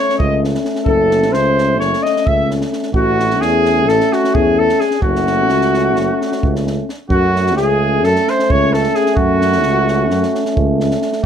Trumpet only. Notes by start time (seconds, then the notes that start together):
Already playing: C#5
0.18 D#5
0.86 A4
1.33 C5
1.79 C#5
2.03 D#5
2.27 E5
2.95 F#4
3.41 G#4
3.89 A4
4.13 F#4
4.34 G#4
4.59 A4
4.80 G#4
5.03 F#4
7.10 F#4
7.56 G#4
8.05 A4
8.29 C5
8.51 C#5
8.73 A4
8.95 G#4
9.16 F#4